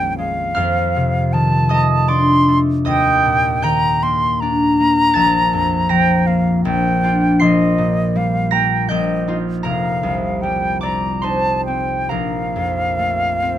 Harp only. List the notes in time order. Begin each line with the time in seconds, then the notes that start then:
Already playing: A#1 F2 D#3 G#3 C#4 C#5 F5 C#6 F6
0.18 G#3
0.55 F2 F5 F6
0.96 C3
1.34 D#3
1.69 A3 D#5 D#6
2.08 D4 D5 D6
2.48 A3
2.85 D#2 D#5 D#6
3.25 A#2
3.62 D#3 G5 G6
4.02 A#3
4.42 D4
4.80 A#3
5.14 A#1 A5 A6
5.53 F2
5.89 F3 A#5 A#6
6.27 A#3
6.65 A#1
7.03 D4 F4
7.39 A#1 C6 C7
7.78 A#2
8.16 G3
8.51 A#3 A#5 A#6
8.88 A#1 G5 G6
9.28 D#4 F4
9.63 F1 A#4 A#5
10.03 C2
10.43 G3
10.81 C4 D5 D6
11.22 D#4 C5 C6
11.68 C4
12.09 A#1 A#4 A#5
12.56 F2
12.99 A3
13.42 C4